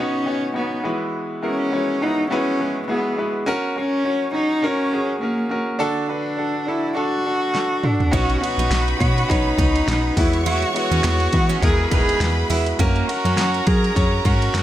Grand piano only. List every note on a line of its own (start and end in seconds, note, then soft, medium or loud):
0.00 0.86 B2 medium
0.00 0.26 B3 loud
0.00 0.26 C#4 loud
0.00 0.27 D#4 loud
0.00 0.27 F#4 loud
0.00 0.85 B4 medium
0.00 0.28 C#5 loud
0.26 0.53 B3 medium
0.26 0.53 C#4 medium
0.26 0.54 D#4 medium
0.26 0.54 F#4 medium
0.26 0.54 C#5 medium
0.54 0.82 B3 medium
0.54 0.83 C#4 medium
0.54 0.83 D#4 medium
0.54 0.83 F#4 medium
0.54 0.84 C#5 medium
0.83 1.68 E3 medium
0.83 1.40 G#3 medium
0.83 1.40 B3 medium
0.83 1.40 E4 medium
0.83 1.40 F#4 medium
0.83 1.41 B4 medium
1.42 1.70 G#3 medium
1.42 1.71 B3 medium
1.42 1.71 E4 medium
1.42 1.71 F#4 medium
1.42 1.71 A#4 medium
1.72 2.00 G#3 medium
1.72 2.00 B3 medium
1.72 2.00 E4 medium
1.72 2.00 F#4 medium
1.72 2.01 C#5 medium
2.02 2.29 G#3 medium
2.02 2.29 B3 medium
2.02 2.30 E4 medium
2.02 2.30 F#4 medium
2.02 2.30 B4 medium
2.30 2.58 G#3 medium
2.30 2.58 B3 medium
2.30 2.58 E4 medium
2.30 2.59 F#4 medium
2.30 2.59 B4 loud
2.59 2.86 G#3 medium
2.59 2.86 B3 medium
2.59 2.87 E4 medium
2.59 2.87 F#4 medium
2.59 2.88 B4 medium
2.88 3.16 G#3 medium
2.88 3.16 B3 medium
2.88 3.17 E4 medium
2.88 3.17 F#4 medium
2.88 3.17 G#4 medium
3.17 3.45 G#3 medium
3.17 3.46 B3 medium
3.17 3.46 E4 medium
3.17 3.46 F#4 medium
3.17 3.46 B4 medium
3.46 3.74 C#4 loud
3.46 3.75 F#4 loud
3.46 3.75 A#4 loud
3.76 4.03 C#4 medium
3.76 4.03 F#4 medium
3.76 4.05 A#4 medium
4.04 4.32 C#4 medium
4.04 4.33 F#4 medium
4.04 4.33 C#5 medium
4.33 4.61 C#4 medium
4.33 4.61 F#4 medium
4.33 4.62 C#5 medium
4.62 4.91 C#4 medium
4.62 4.91 F#4 medium
4.62 4.91 A#4 loud
4.92 5.20 C#4 medium
4.92 5.21 F#4 medium
4.92 5.21 G#4 medium
5.21 5.48 C#4 medium
5.21 5.49 F#4 medium
5.21 5.50 A#4 medium
5.49 5.78 C#4 medium
5.49 5.78 F#4 medium
5.49 5.79 A#4 medium
5.79 6.63 D3 medium
5.79 6.07 D4 loud
5.79 6.07 F#4 loud
5.79 6.08 A4 loud
6.08 6.35 D4 medium
6.08 6.36 F#4 medium
6.08 6.37 B4 medium
6.37 6.65 D4 medium
6.37 6.66 F#4 medium
6.37 6.66 A4 medium
6.67 6.93 D4 medium
6.67 6.94 F#4 medium
6.67 6.95 A4 medium
6.95 7.23 D4 medium
6.95 7.24 F#4 medium
6.95 7.24 A4 loud
7.25 7.52 D4 medium
7.25 7.53 F#4 medium
7.25 7.54 A4 medium
7.54 7.81 D4 medium
7.54 7.82 F#4 medium
7.54 7.83 A4 medium
7.83 8.11 D4 medium
7.83 8.10 F#4 medium
7.83 8.12 A4 medium
8.11 8.96 B2 medium
8.11 8.39 B3 loud
8.11 8.40 C#4 medium
8.11 8.40 D#4 medium
8.11 8.40 F#4 medium
8.11 8.41 C#5 loud
8.41 8.69 B3 medium
8.41 8.69 C#4 medium
8.41 8.69 D#4 medium
8.41 8.70 F#4 medium
8.41 8.70 C#5 medium
8.70 8.97 B3 medium
8.70 8.98 C#4 medium
8.70 8.98 D#4 medium
8.70 8.99 F#4 medium
8.70 8.98 C#5 medium
8.99 9.27 B3 medium
8.99 9.27 C#4 medium
8.99 9.28 D#4 medium
8.99 9.28 F#4 medium
8.99 9.28 C#5 medium
9.29 9.56 B3 medium
9.29 9.57 C#4 medium
9.29 9.57 D#4 medium
9.29 9.57 F#4 medium
9.29 9.57 C#5 loud
9.58 9.85 B3 medium
9.58 9.85 C#4 medium
9.58 9.86 D#4 medium
9.58 9.86 F#4 medium
9.58 9.86 C#5 medium
9.86 10.15 B3 medium
9.86 10.15 C#4 medium
9.86 10.15 D#4 medium
9.86 10.15 F#4 medium
9.86 10.16 C#5 medium
10.17 11.01 E3 medium
10.17 10.72 G#3 medium
10.17 10.73 B3 medium
10.17 10.73 E4 medium
10.17 10.73 F#4 medium
10.17 10.74 B4 medium
10.74 11.02 G#3 medium
10.74 11.02 B3 medium
10.74 11.02 E4 medium
10.74 11.03 F#4 medium
10.74 11.03 B4 medium
11.03 11.31 G#3 medium
11.03 11.31 B3 medium
11.03 11.31 E4 medium
11.03 11.32 F#4 medium
11.03 11.32 B4 medium
11.33 11.60 G#3 medium
11.33 11.60 B3 medium
11.33 11.61 E4 medium
11.33 11.61 F#4 medium
11.33 11.62 B4 medium
11.61 11.89 G#3 medium
11.61 11.90 B3 medium
11.61 11.90 E4 medium
11.61 11.91 F#4 medium
11.61 11.91 A#4 loud
11.91 12.19 G#3 medium
11.91 12.19 B3 medium
11.91 12.20 E4 medium
11.91 12.20 F#4 medium
11.91 12.20 B4 medium
12.20 12.48 G#3 medium
12.20 12.49 B3 medium
12.20 12.49 E4 medium
12.20 12.49 F#4 medium
12.20 12.50 B4 medium
12.50 12.78 G#3 medium
12.50 12.78 B3 medium
12.50 12.78 E4 medium
12.50 12.78 F#4 medium
12.50 12.79 B4 medium
12.79 13.06 C#4 loud
12.79 13.07 F#4 loud
12.79 13.08 A#4 loud
13.08 13.35 C#4 medium
13.08 13.36 F#4 medium
13.08 13.37 A#4 medium
13.36 13.65 C#4 medium
13.36 13.65 F#4 medium
13.36 13.66 C#5 medium
13.66 13.93 C#4 medium
13.66 13.94 F#4 medium
13.66 13.95 A#4 medium
13.95 14.22 C#4 loud
13.95 14.23 F#4 medium
13.95 14.24 C#5 loud
14.24 14.51 C#4 medium
14.24 14.52 F#4 medium
14.24 14.53 A#4 medium
14.53 14.63 C#4 medium
14.53 14.63 F#4 medium
14.53 14.63 A#4 medium